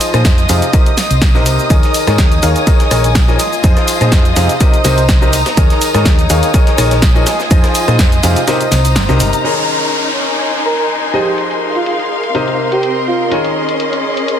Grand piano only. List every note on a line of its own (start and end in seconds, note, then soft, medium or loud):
0.00 0.11 F3 medium
0.00 0.11 D#4 medium
0.00 0.11 F4 medium
0.00 0.11 G#4 medium
0.00 0.11 C5 medium
0.00 0.11 D#5 medium
0.14 0.35 F3 medium
0.14 0.35 D#4 medium
0.14 0.35 F4 medium
0.14 0.35 G#4 medium
0.14 0.35 C5 medium
0.14 0.35 D#5 medium
0.49 0.63 C3 medium
0.49 0.63 D#4 medium
0.49 0.63 F4 medium
0.49 0.63 G#4 medium
0.49 0.63 C5 medium
0.49 0.63 F5 loud
0.73 0.87 C3 medium
0.73 0.87 D#4 medium
0.73 0.87 G4 medium
0.73 0.87 A#4 medium
0.73 0.87 C5 medium
0.73 0.87 D#5 medium
1.35 1.68 C3 medium
1.35 1.68 D#4 medium
1.35 1.68 G4 medium
1.35 1.68 A#4 medium
1.35 1.68 C5 medium
1.35 1.68 D#5 medium
1.70 2.04 D#3 medium
1.70 2.04 D#4 medium
1.70 2.04 G#4 medium
1.70 2.04 A#4 medium
1.70 2.04 C#5 medium
1.70 2.04 D#5 medium
2.07 2.28 D#3 medium
2.07 2.28 D#4 medium
2.07 2.28 G#4 medium
2.07 2.28 A#4 medium
2.07 2.28 C#5 medium
2.07 2.28 D#5 medium
2.43 2.57 D#3 medium
2.43 2.57 D#4 medium
2.43 2.57 G#4 medium
2.43 2.57 A#4 medium
2.43 2.57 C#5 medium
2.43 2.57 F5 loud
2.67 2.81 D#3 medium
2.67 2.81 D#4 medium
2.67 2.81 G#4 medium
2.67 2.81 A#4 medium
2.67 2.81 C#5 medium
2.67 2.81 D#5 medium
2.91 3.05 D#3 medium
2.91 3.05 D#4 medium
2.91 3.05 G#4 medium
2.91 3.05 A#4 medium
2.91 3.05 C#5 medium
2.91 3.05 D#5 loud
3.28 3.38 F3 medium
3.28 3.38 D#4 medium
3.28 3.38 G#4 medium
3.28 3.38 A#4 medium
3.28 3.38 C#5 medium
3.28 3.38 D#5 medium
3.64 3.98 F3 medium
3.64 3.98 D#4 medium
3.64 3.98 F4 medium
3.64 3.98 G#4 medium
3.64 3.98 C5 medium
3.64 3.98 D#5 medium
4.01 4.22 F3 medium
4.01 4.22 D#4 medium
4.01 4.22 F4 medium
4.01 4.22 G#4 medium
4.01 4.22 C5 medium
4.01 4.22 D#5 medium
4.36 4.50 C3 medium
4.36 4.50 D#4 medium
4.36 4.50 F4 medium
4.36 4.50 G#4 medium
4.36 4.50 C5 medium
4.36 4.50 F5 loud
4.60 4.74 C3 medium
4.60 4.74 D#4 medium
4.60 4.74 G4 medium
4.60 4.74 A#4 medium
4.60 4.74 C5 medium
4.60 4.74 D#5 medium
4.85 4.99 C3 medium
4.85 4.99 D#4 medium
4.85 4.99 G4 medium
4.85 4.99 A#4 medium
4.85 4.99 C5 medium
4.85 4.99 D#5 loud
5.22 5.34 C3 medium
5.22 5.34 D#4 medium
5.22 5.34 G4 medium
5.22 5.34 A#4 medium
5.22 5.34 C5 medium
5.22 5.34 D#5 medium
5.57 5.91 D#3 medium
5.57 5.91 D#4 medium
5.57 5.91 G#4 medium
5.57 5.91 A#4 medium
5.57 5.91 C#5 medium
5.57 5.91 D#5 medium
5.94 6.15 D#3 medium
5.94 6.15 D#4 medium
5.94 6.15 G#4 medium
5.94 6.15 A#4 medium
5.94 6.15 C#5 medium
5.94 6.15 D#5 medium
6.30 6.44 D#3 medium
6.30 6.44 D#4 medium
6.30 6.44 G#4 medium
6.30 6.44 A#4 medium
6.30 6.44 C#5 medium
6.30 6.44 F5 loud
6.54 6.68 D#3 medium
6.54 6.68 D#4 medium
6.54 6.68 G#4 medium
6.54 6.68 A#4 medium
6.54 6.68 C#5 medium
6.54 6.68 D#5 medium
6.78 6.92 D#3 medium
6.78 6.92 D#4 medium
6.78 6.92 G#4 medium
6.78 6.92 A#4 medium
6.78 6.92 C#5 medium
6.78 6.92 D#5 loud
7.15 7.25 F3 medium
7.15 7.25 D#4 medium
7.15 7.25 G#4 medium
7.15 7.25 A#4 medium
7.15 7.25 C#5 medium
7.15 7.25 D#5 medium
7.51 7.85 F3 medium
7.51 7.85 D#4 medium
7.51 7.85 F4 medium
7.51 7.85 G#4 medium
7.51 7.85 C5 medium
7.51 7.85 D#5 medium
7.88 8.09 F3 medium
7.88 8.09 D#4 medium
7.88 8.09 F4 medium
7.88 8.09 G#4 medium
7.88 8.09 C5 medium
7.88 8.09 D#5 medium
8.23 8.37 C3 medium
8.23 8.37 D#4 medium
8.23 8.37 F4 medium
8.23 8.37 G#4 medium
8.23 8.37 C5 medium
8.23 8.37 F5 loud
8.48 8.62 C3 medium
8.48 8.62 D#4 medium
8.48 8.62 G4 medium
8.48 8.62 A#4 medium
8.48 8.62 C5 medium
8.48 8.62 D#5 medium
9.09 9.42 C3 medium
9.09 9.42 D#4 medium
9.09 9.42 G4 medium
9.09 9.42 A#4 medium
9.09 9.42 C5 medium
9.09 9.42 D#5 medium
9.44 11.11 D#3 medium
9.44 11.11 D#4 medium
9.44 11.11 G#4 medium
9.44 11.11 A#4 medium
9.44 11.11 C#5 medium
9.44 11.11 D#5 medium
11.14 12.32 F3 medium
11.14 12.32 D#4 medium
11.14 12.32 F4 medium
11.14 12.32 G#4 medium
11.14 12.32 C5 medium
11.14 12.32 D#5 medium
12.35 13.29 C3 medium
12.35 13.29 D#4 medium
12.35 13.29 G4 medium
12.35 13.29 A#4 medium
12.35 13.29 C5 medium
12.35 13.29 D#5 medium
13.31 14.39 D#3 medium
13.31 14.39 D#4 medium
13.31 14.39 G#4 medium
13.31 14.39 A#4 medium
13.31 14.39 C#5 medium
13.31 14.39 D#5 medium